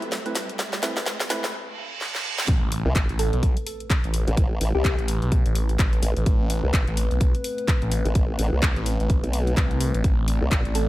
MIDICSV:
0, 0, Header, 1, 11, 480
1, 0, Start_track
1, 0, Key_signature, 0, "minor"
1, 0, Tempo, 472441
1, 604, Time_signature, 4, 2, 24, 8
1, 11061, End_track
2, 0, Start_track
2, 0, Title_t, "Synth pluck"
2, 0, Program_c, 0, 84
2, 3243, Note_on_c, 0, 69, 93
2, 3406, Note_off_c, 0, 69, 0
2, 4824, Note_on_c, 0, 67, 97
2, 5488, Note_off_c, 0, 67, 0
2, 10924, Note_on_c, 0, 69, 96
2, 11061, Note_off_c, 0, 69, 0
2, 11061, End_track
3, 0, Start_track
3, 0, Title_t, "String section"
3, 0, Program_c, 1, 48
3, 0, Note_on_c, 1, 57, 92
3, 0, Note_on_c, 1, 60, 88
3, 0, Note_on_c, 1, 67, 77
3, 0, Note_on_c, 1, 76, 76
3, 1563, Note_off_c, 1, 57, 0
3, 1563, Note_off_c, 1, 60, 0
3, 1563, Note_off_c, 1, 67, 0
3, 1563, Note_off_c, 1, 76, 0
3, 11061, End_track
4, 0, Start_track
4, 0, Title_t, "Synth stab"
4, 0, Program_c, 2, 62
4, 263, Note_on_c, 2, 57, 75
4, 263, Note_on_c, 2, 60, 67
4, 263, Note_on_c, 2, 64, 68
4, 263, Note_on_c, 2, 71, 83
4, 378, Note_off_c, 2, 57, 0
4, 378, Note_off_c, 2, 60, 0
4, 378, Note_off_c, 2, 64, 0
4, 378, Note_off_c, 2, 71, 0
4, 842, Note_on_c, 2, 57, 81
4, 842, Note_on_c, 2, 60, 72
4, 842, Note_on_c, 2, 64, 70
4, 843, Note_on_c, 2, 71, 84
4, 995, Note_off_c, 2, 57, 0
4, 995, Note_off_c, 2, 60, 0
4, 995, Note_off_c, 2, 64, 0
4, 995, Note_off_c, 2, 71, 0
4, 1322, Note_on_c, 2, 64, 78
4, 1323, Note_on_c, 2, 57, 86
4, 1323, Note_on_c, 2, 60, 76
4, 1323, Note_on_c, 2, 71, 93
4, 1475, Note_off_c, 2, 57, 0
4, 1475, Note_off_c, 2, 60, 0
4, 1475, Note_off_c, 2, 64, 0
4, 1475, Note_off_c, 2, 71, 0
4, 11061, End_track
5, 0, Start_track
5, 0, Title_t, "Analog synth pad"
5, 0, Program_c, 3, 89
5, 0, Note_on_c, 3, 57, 77
5, 0, Note_on_c, 3, 60, 73
5, 0, Note_on_c, 3, 69, 89
5, 1522, Note_off_c, 3, 57, 0
5, 1522, Note_off_c, 3, 60, 0
5, 1534, Note_off_c, 3, 69, 0
5, 2521, Note_on_c, 3, 57, 82
5, 2522, Note_on_c, 3, 60, 73
5, 2522, Note_on_c, 3, 71, 93
5, 10190, Note_off_c, 3, 71, 0
5, 10202, Note_on_c, 3, 74, 93
5, 11061, Note_off_c, 3, 57, 0
5, 11061, Note_off_c, 3, 60, 0
5, 11061, Note_off_c, 3, 74, 0
5, 11061, End_track
6, 0, Start_track
6, 0, Title_t, "Detuned saw bass"
6, 0, Program_c, 4, 39
6, 2523, Note_on_c, 4, 33, 97
6, 2881, Note_off_c, 4, 33, 0
6, 3145, Note_on_c, 4, 33, 96
6, 3362, Note_off_c, 4, 33, 0
6, 3384, Note_on_c, 4, 35, 98
6, 3602, Note_off_c, 4, 35, 0
6, 4106, Note_on_c, 4, 33, 97
6, 4322, Note_off_c, 4, 33, 0
6, 5065, Note_on_c, 4, 33, 99
6, 5282, Note_off_c, 4, 33, 0
6, 5304, Note_on_c, 4, 35, 94
6, 5522, Note_off_c, 4, 35, 0
6, 5543, Note_on_c, 4, 33, 100
6, 5867, Note_off_c, 4, 33, 0
6, 5884, Note_on_c, 4, 33, 99
6, 6108, Note_off_c, 4, 33, 0
6, 6265, Note_on_c, 4, 33, 99
6, 6348, Note_off_c, 4, 33, 0
6, 6364, Note_on_c, 4, 33, 98
6, 6722, Note_off_c, 4, 33, 0
6, 6985, Note_on_c, 4, 33, 101
6, 7202, Note_off_c, 4, 33, 0
6, 7225, Note_on_c, 4, 35, 96
6, 7442, Note_off_c, 4, 35, 0
6, 7945, Note_on_c, 4, 33, 97
6, 8162, Note_off_c, 4, 33, 0
6, 8904, Note_on_c, 4, 33, 99
6, 9122, Note_off_c, 4, 33, 0
6, 9144, Note_on_c, 4, 33, 96
6, 9362, Note_off_c, 4, 33, 0
6, 9723, Note_on_c, 4, 36, 93
6, 10082, Note_off_c, 4, 36, 0
6, 10103, Note_on_c, 4, 33, 101
6, 10187, Note_off_c, 4, 33, 0
6, 10203, Note_on_c, 4, 33, 95
6, 10562, Note_off_c, 4, 33, 0
6, 10823, Note_on_c, 4, 33, 99
6, 11041, Note_off_c, 4, 33, 0
6, 11061, End_track
7, 0, Start_track
7, 0, Title_t, "Wobble bass"
7, 0, Program_c, 5, 39
7, 2903, Note_on_c, 5, 36, 99
7, 2987, Note_off_c, 5, 36, 0
7, 3003, Note_on_c, 5, 33, 96
7, 3122, Note_off_c, 5, 33, 0
7, 4344, Note_on_c, 5, 33, 97
7, 4668, Note_off_c, 5, 33, 0
7, 4683, Note_on_c, 5, 33, 101
7, 4801, Note_off_c, 5, 33, 0
7, 4824, Note_on_c, 5, 36, 96
7, 5042, Note_off_c, 5, 36, 0
7, 6122, Note_on_c, 5, 33, 97
7, 6241, Note_off_c, 5, 33, 0
7, 6742, Note_on_c, 5, 36, 97
7, 6827, Note_off_c, 5, 36, 0
7, 6843, Note_on_c, 5, 33, 95
7, 6962, Note_off_c, 5, 33, 0
7, 8183, Note_on_c, 5, 33, 98
7, 8507, Note_off_c, 5, 33, 0
7, 8523, Note_on_c, 5, 33, 103
7, 8641, Note_off_c, 5, 33, 0
7, 8663, Note_on_c, 5, 36, 96
7, 8881, Note_off_c, 5, 36, 0
7, 9383, Note_on_c, 5, 35, 96
7, 9707, Note_off_c, 5, 35, 0
7, 10583, Note_on_c, 5, 36, 95
7, 10667, Note_off_c, 5, 36, 0
7, 10683, Note_on_c, 5, 33, 100
7, 10802, Note_off_c, 5, 33, 0
7, 11061, End_track
8, 0, Start_track
8, 0, Title_t, "Impact"
8, 0, Program_c, 6, 103
8, 2522, Note_on_c, 6, 60, 76
8, 4443, Note_off_c, 6, 60, 0
8, 11061, End_track
9, 0, Start_track
9, 0, Title_t, "Reverse cymbal"
9, 0, Program_c, 7, 119
9, 1561, Note_on_c, 7, 60, 75
9, 2522, Note_off_c, 7, 60, 0
9, 11061, End_track
10, 0, Start_track
10, 0, Title_t, "Riser"
10, 0, Program_c, 8, 103
10, 0, Note_on_c, 8, 60, 78
10, 1562, Note_off_c, 8, 60, 0
10, 11061, End_track
11, 0, Start_track
11, 0, Title_t, "Drums"
11, 23, Note_on_c, 9, 42, 36
11, 121, Note_off_c, 9, 42, 0
11, 121, Note_on_c, 9, 38, 83
11, 121, Note_on_c, 9, 42, 71
11, 223, Note_off_c, 9, 38, 0
11, 223, Note_off_c, 9, 42, 0
11, 262, Note_on_c, 9, 42, 36
11, 361, Note_on_c, 9, 38, 88
11, 361, Note_on_c, 9, 46, 110
11, 363, Note_off_c, 9, 42, 0
11, 462, Note_off_c, 9, 38, 0
11, 462, Note_off_c, 9, 46, 0
11, 503, Note_on_c, 9, 42, 52
11, 600, Note_off_c, 9, 42, 0
11, 600, Note_on_c, 9, 38, 90
11, 600, Note_on_c, 9, 42, 74
11, 702, Note_off_c, 9, 38, 0
11, 702, Note_off_c, 9, 42, 0
11, 742, Note_on_c, 9, 38, 81
11, 742, Note_on_c, 9, 42, 36
11, 841, Note_off_c, 9, 38, 0
11, 841, Note_on_c, 9, 38, 99
11, 841, Note_on_c, 9, 46, 112
11, 843, Note_off_c, 9, 42, 0
11, 943, Note_off_c, 9, 38, 0
11, 943, Note_off_c, 9, 46, 0
11, 982, Note_on_c, 9, 38, 89
11, 982, Note_on_c, 9, 42, 36
11, 1081, Note_off_c, 9, 38, 0
11, 1081, Note_off_c, 9, 42, 0
11, 1081, Note_on_c, 9, 38, 98
11, 1081, Note_on_c, 9, 42, 80
11, 1183, Note_off_c, 9, 38, 0
11, 1183, Note_off_c, 9, 42, 0
11, 1223, Note_on_c, 9, 38, 86
11, 1223, Note_on_c, 9, 42, 34
11, 1323, Note_off_c, 9, 38, 0
11, 1323, Note_on_c, 9, 38, 100
11, 1323, Note_on_c, 9, 46, 107
11, 1324, Note_off_c, 9, 42, 0
11, 1424, Note_off_c, 9, 38, 0
11, 1424, Note_off_c, 9, 46, 0
11, 1463, Note_on_c, 9, 38, 88
11, 1463, Note_on_c, 9, 42, 34
11, 1565, Note_off_c, 9, 38, 0
11, 1565, Note_off_c, 9, 42, 0
11, 2042, Note_on_c, 9, 38, 58
11, 2144, Note_off_c, 9, 38, 0
11, 2182, Note_on_c, 9, 38, 64
11, 2284, Note_off_c, 9, 38, 0
11, 2423, Note_on_c, 9, 38, 87
11, 2522, Note_on_c, 9, 42, 80
11, 2523, Note_on_c, 9, 36, 122
11, 2524, Note_off_c, 9, 38, 0
11, 2624, Note_off_c, 9, 42, 0
11, 2625, Note_off_c, 9, 36, 0
11, 2762, Note_on_c, 9, 46, 112
11, 2863, Note_off_c, 9, 46, 0
11, 3002, Note_on_c, 9, 42, 85
11, 3003, Note_on_c, 9, 36, 116
11, 3005, Note_on_c, 9, 39, 125
11, 3103, Note_off_c, 9, 42, 0
11, 3105, Note_off_c, 9, 36, 0
11, 3107, Note_off_c, 9, 39, 0
11, 3142, Note_on_c, 9, 42, 37
11, 3243, Note_on_c, 9, 46, 106
11, 3244, Note_off_c, 9, 42, 0
11, 3344, Note_off_c, 9, 46, 0
11, 3384, Note_on_c, 9, 42, 38
11, 3483, Note_on_c, 9, 36, 112
11, 3484, Note_off_c, 9, 42, 0
11, 3484, Note_on_c, 9, 42, 85
11, 3585, Note_off_c, 9, 36, 0
11, 3586, Note_off_c, 9, 42, 0
11, 3625, Note_on_c, 9, 42, 57
11, 3724, Note_on_c, 9, 46, 105
11, 3726, Note_off_c, 9, 42, 0
11, 3826, Note_off_c, 9, 46, 0
11, 3865, Note_on_c, 9, 42, 38
11, 3964, Note_on_c, 9, 36, 120
11, 3965, Note_off_c, 9, 42, 0
11, 3965, Note_on_c, 9, 42, 80
11, 3968, Note_on_c, 9, 39, 126
11, 4065, Note_off_c, 9, 36, 0
11, 4066, Note_off_c, 9, 42, 0
11, 4069, Note_off_c, 9, 39, 0
11, 4105, Note_on_c, 9, 42, 38
11, 4203, Note_on_c, 9, 46, 106
11, 4207, Note_off_c, 9, 42, 0
11, 4305, Note_off_c, 9, 46, 0
11, 4344, Note_on_c, 9, 42, 55
11, 4443, Note_off_c, 9, 42, 0
11, 4443, Note_on_c, 9, 42, 83
11, 4444, Note_on_c, 9, 36, 125
11, 4545, Note_off_c, 9, 36, 0
11, 4545, Note_off_c, 9, 42, 0
11, 4683, Note_on_c, 9, 46, 110
11, 4785, Note_off_c, 9, 46, 0
11, 4924, Note_on_c, 9, 36, 124
11, 4924, Note_on_c, 9, 42, 83
11, 4927, Note_on_c, 9, 39, 127
11, 5025, Note_off_c, 9, 36, 0
11, 5026, Note_off_c, 9, 42, 0
11, 5029, Note_off_c, 9, 39, 0
11, 5066, Note_on_c, 9, 42, 37
11, 5164, Note_on_c, 9, 46, 113
11, 5167, Note_off_c, 9, 42, 0
11, 5265, Note_off_c, 9, 46, 0
11, 5305, Note_on_c, 9, 42, 36
11, 5403, Note_off_c, 9, 42, 0
11, 5403, Note_on_c, 9, 42, 82
11, 5404, Note_on_c, 9, 36, 118
11, 5505, Note_off_c, 9, 36, 0
11, 5505, Note_off_c, 9, 42, 0
11, 5544, Note_on_c, 9, 42, 54
11, 5643, Note_on_c, 9, 46, 106
11, 5646, Note_off_c, 9, 42, 0
11, 5745, Note_off_c, 9, 46, 0
11, 5784, Note_on_c, 9, 42, 38
11, 5883, Note_off_c, 9, 42, 0
11, 5883, Note_on_c, 9, 42, 79
11, 5884, Note_on_c, 9, 36, 123
11, 5886, Note_on_c, 9, 39, 126
11, 5984, Note_off_c, 9, 42, 0
11, 5985, Note_off_c, 9, 36, 0
11, 5988, Note_off_c, 9, 39, 0
11, 6024, Note_on_c, 9, 42, 36
11, 6122, Note_on_c, 9, 46, 112
11, 6126, Note_off_c, 9, 42, 0
11, 6224, Note_off_c, 9, 46, 0
11, 6264, Note_on_c, 9, 42, 53
11, 6363, Note_off_c, 9, 42, 0
11, 6363, Note_on_c, 9, 42, 77
11, 6364, Note_on_c, 9, 36, 127
11, 6465, Note_off_c, 9, 36, 0
11, 6465, Note_off_c, 9, 42, 0
11, 6603, Note_on_c, 9, 46, 112
11, 6705, Note_off_c, 9, 46, 0
11, 6843, Note_on_c, 9, 36, 127
11, 6843, Note_on_c, 9, 42, 80
11, 6846, Note_on_c, 9, 39, 124
11, 6944, Note_off_c, 9, 42, 0
11, 6945, Note_off_c, 9, 36, 0
11, 6948, Note_off_c, 9, 39, 0
11, 6985, Note_on_c, 9, 42, 34
11, 7083, Note_on_c, 9, 46, 114
11, 7086, Note_off_c, 9, 42, 0
11, 7185, Note_off_c, 9, 46, 0
11, 7225, Note_on_c, 9, 42, 36
11, 7323, Note_off_c, 9, 42, 0
11, 7323, Note_on_c, 9, 42, 79
11, 7324, Note_on_c, 9, 36, 120
11, 7424, Note_off_c, 9, 42, 0
11, 7425, Note_off_c, 9, 36, 0
11, 7464, Note_on_c, 9, 42, 52
11, 7562, Note_on_c, 9, 46, 103
11, 7566, Note_off_c, 9, 42, 0
11, 7664, Note_off_c, 9, 46, 0
11, 7704, Note_on_c, 9, 42, 37
11, 7804, Note_off_c, 9, 42, 0
11, 7804, Note_on_c, 9, 36, 127
11, 7804, Note_on_c, 9, 42, 76
11, 7807, Note_on_c, 9, 39, 118
11, 7905, Note_off_c, 9, 36, 0
11, 7905, Note_off_c, 9, 42, 0
11, 7909, Note_off_c, 9, 39, 0
11, 7945, Note_on_c, 9, 42, 35
11, 8042, Note_on_c, 9, 46, 114
11, 8046, Note_off_c, 9, 42, 0
11, 8144, Note_off_c, 9, 46, 0
11, 8184, Note_on_c, 9, 42, 52
11, 8282, Note_off_c, 9, 42, 0
11, 8282, Note_on_c, 9, 42, 78
11, 8284, Note_on_c, 9, 36, 124
11, 8384, Note_off_c, 9, 42, 0
11, 8385, Note_off_c, 9, 36, 0
11, 8522, Note_on_c, 9, 46, 110
11, 8624, Note_off_c, 9, 46, 0
11, 8762, Note_on_c, 9, 42, 79
11, 8763, Note_on_c, 9, 36, 126
11, 8766, Note_on_c, 9, 39, 120
11, 8864, Note_off_c, 9, 42, 0
11, 8865, Note_off_c, 9, 36, 0
11, 8867, Note_off_c, 9, 39, 0
11, 8904, Note_on_c, 9, 42, 33
11, 9003, Note_on_c, 9, 46, 110
11, 9006, Note_off_c, 9, 42, 0
11, 9104, Note_off_c, 9, 46, 0
11, 9145, Note_on_c, 9, 42, 35
11, 9243, Note_off_c, 9, 42, 0
11, 9243, Note_on_c, 9, 42, 72
11, 9244, Note_on_c, 9, 36, 119
11, 9344, Note_off_c, 9, 42, 0
11, 9345, Note_off_c, 9, 36, 0
11, 9384, Note_on_c, 9, 42, 51
11, 9483, Note_on_c, 9, 46, 102
11, 9486, Note_off_c, 9, 42, 0
11, 9585, Note_off_c, 9, 46, 0
11, 9624, Note_on_c, 9, 42, 36
11, 9723, Note_off_c, 9, 42, 0
11, 9723, Note_on_c, 9, 36, 126
11, 9723, Note_on_c, 9, 42, 75
11, 9726, Note_on_c, 9, 39, 109
11, 9824, Note_off_c, 9, 42, 0
11, 9825, Note_off_c, 9, 36, 0
11, 9828, Note_off_c, 9, 39, 0
11, 9864, Note_on_c, 9, 42, 35
11, 9962, Note_on_c, 9, 46, 116
11, 9966, Note_off_c, 9, 42, 0
11, 10064, Note_off_c, 9, 46, 0
11, 10104, Note_on_c, 9, 42, 53
11, 10203, Note_off_c, 9, 42, 0
11, 10203, Note_on_c, 9, 36, 122
11, 10203, Note_on_c, 9, 42, 75
11, 10305, Note_off_c, 9, 36, 0
11, 10305, Note_off_c, 9, 42, 0
11, 10443, Note_on_c, 9, 46, 106
11, 10544, Note_off_c, 9, 46, 0
11, 10682, Note_on_c, 9, 42, 79
11, 10683, Note_on_c, 9, 36, 116
11, 10686, Note_on_c, 9, 39, 117
11, 10784, Note_off_c, 9, 42, 0
11, 10785, Note_off_c, 9, 36, 0
11, 10787, Note_off_c, 9, 39, 0
11, 10823, Note_on_c, 9, 42, 35
11, 10922, Note_on_c, 9, 46, 106
11, 10925, Note_off_c, 9, 42, 0
11, 11024, Note_off_c, 9, 46, 0
11, 11061, End_track
0, 0, End_of_file